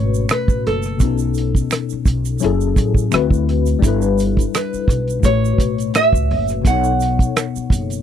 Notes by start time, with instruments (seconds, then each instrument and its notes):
Already playing: upright bass G#1, tine electric piano B2 A3 C#4 F#4 B4, nylon-string guitar C#5
0.14 shaker
0.29 nylon-string guitar B4, finger snap, cross-stick, closed hi-hat, shaker
0.48 upright bass A1, kick, shaker
0.67 upright bass F#1, nylon-string guitar A4, cross-stick, closed hi-hat
0.83 cross-stick, shaker
0.98 upright bass B1, tine electric piano B2 B3, kick, closed hi-hat, shaker
1.02 tine electric piano C#4 D#4
1.07 tine electric piano A4
1.18 shaker
1.34 closed hi-hat, shaker
1.55 kick, closed hi-hat, shaker
1.71 finger snap, cross-stick, closed hi-hat, shaker
1.90 muted upright bass stroke, shaker
2.05 upright bass B1, kick, closed hi-hat, shaker
2.25 closed hi-hat, shaker
2.39 tine electric piano F#3 C#4 E4, closed hi-hat, shaker
2.44 upright bass F#1, tine electric piano G#4 A4
2.61 shaker
2.76 upright bass A1, kick, closed hi-hat, shaker
2.94 kick, shaker
3.11 upright bass D2, tine electric piano D3 A3 C4 E4 F#4, finger snap, cross-stick, closed hi-hat, shaker
3.15 tine electric piano B4
3.30 kick, shaker
3.49 cross-stick, closed hi-hat
3.66 closed hi-hat, shaker
3.79 tine electric piano G3 D4, kick
3.83 upright bass G1, tine electric piano E4 A4, closed hi-hat, shaker
3.87 tine electric piano B4
4.02 shaker
4.18 closed hi-hat, shaker
4.37 kick, closed hi-hat, shaker
4.55 nylon-string guitar B4, finger snap, cross-stick, closed hi-hat, shaker
4.74 muted upright bass stroke, shaker
4.88 upright bass B1, kick, closed hi-hat, shaker
5.08 closed hi-hat, shaker
5.20 tine electric piano A2 A3, kick, shaker
5.24 upright bass A1, tine electric piano F#4 B4, nylon-string guitar C#5, closed hi-hat
5.29 tine electric piano C#5
5.45 shaker
5.58 upright bass B1, kick, closed hi-hat, shaker
5.78 closed hi-hat, shaker
5.94 nylon-string guitar E5, finger snap, cross-stick, closed hi-hat, shaker
6.13 upright bass C#2, kick, shaker
6.31 upright bass F#1, cross-stick, open hi-hat
6.48 cross-stick, closed hi-hat, shaker
6.61 tine electric piano B2 B3, kick, closed hi-hat
6.66 upright bass B1, tine electric piano D#4 A4, nylon-string guitar F#5, shaker
6.70 tine electric piano C#5
6.84 shaker
7.00 closed hi-hat, shaker
7.19 kick, closed hi-hat, shaker
7.36 finger snap, cross-stick, closed hi-hat, shaker
7.56 muted upright bass stroke, shaker
7.70 upright bass F#1, kick, closed hi-hat, shaker
7.90 closed hi-hat, shaker